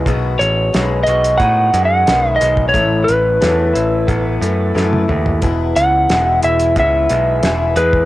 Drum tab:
HH |x-x-x-xxx-x-x-x-|x-x-x-x-x-x-----|x-x-x-xxx-x-x-x-|
SD |----o-------o---|----o-------o---|----o-------o---|
T1 |----------------|-------------o--|----------------|
T2 |----------------|--------------o-|----------------|
FT |----------------|---------------o|----------------|
BD |o-------o------o|o-------o-------|o-------o------o|